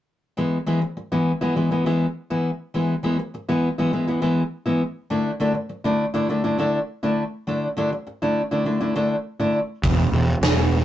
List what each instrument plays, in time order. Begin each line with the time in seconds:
0.37 steel-string acoustic guitar E3 G#3 B3 E4
0.66 steel-string acoustic guitar E3 G#3 B3 E4
0.81 muted steel-string acoustic guitar stroke
0.97 muted steel-string acoustic guitar stroke
1.12 steel-string acoustic guitar E3 G#3 B3 E4
1.41 steel-string acoustic guitar E3 G#3 B3 E4
1.56 steel-string acoustic guitar E3 G#3 B3 E4
1.71 steel-string acoustic guitar E3 G#3 B3 E4
1.86 steel-string acoustic guitar E3 G#3 B3 E4
2.30 steel-string acoustic guitar E3 G#3 B3 E4
2.74 steel-string acoustic guitar E3 G#3 B3 E4
3.03 steel-string acoustic guitar E3 G#3 B3 E4
3.19 muted steel-string acoustic guitar stroke
3.34 muted steel-string acoustic guitar stroke
3.49 steel-string acoustic guitar E3 G#3 B3 E4
3.78 steel-string acoustic guitar E3 G#3 B3 E4
3.93 steel-string acoustic guitar E3 G#3 B3 E4
4.07 steel-string acoustic guitar E3 G#3 B3 E4
4.22 steel-string acoustic guitar E3 G#3 B3 E4
4.66 steel-string acoustic guitar E3 G#3 B3 E4
5.10 steel-string acoustic guitar D3 A3 D4 E4
5.40 steel-string acoustic guitar D3 A3 D4 E4
5.54 muted steel-string acoustic guitar stroke
5.69 muted steel-string acoustic guitar stroke
5.84 steel-string acoustic guitar D3 A3 D4 E4
6.14 steel-string acoustic guitar D3 A3 D4 E4
6.29 steel-string acoustic guitar D3 A3 D4 E4
6.44 steel-string acoustic guitar D3 A3 D4 E4
6.58 steel-string acoustic guitar D3 A3 D4 E4
7.03 steel-string acoustic guitar D3 A3 D4 E4
7.47 steel-string acoustic guitar D3 A3 D4 E4
7.77 steel-string acoustic guitar D3 A3 D4 E4
7.92 muted steel-string acoustic guitar stroke
8.07 muted steel-string acoustic guitar stroke
8.22 steel-string acoustic guitar D3 A3 D4 E4
8.51 steel-string acoustic guitar D3 A3 D4 E4
8.65 steel-string acoustic guitar D3 A3 D4 E4
8.80 steel-string acoustic guitar D3 A3 D4 E4
8.95 steel-string acoustic guitar D3 A3 D4 E4
9.40 steel-string acoustic guitar D3 A3 D4 E4
9.83 picked electric bass E1, steel-string acoustic guitar E3 G#3 B3 E4, kick, open hi-hat
10.12 picked electric bass E1, steel-string acoustic guitar E3 G#3 B3 E4
10.28 muted steel-string acoustic guitar stroke
10.42 picked electric bass E1, muted steel-string acoustic guitar stroke, snare, open hi-hat
10.57 steel-string acoustic guitar E3 G#3 B3 E4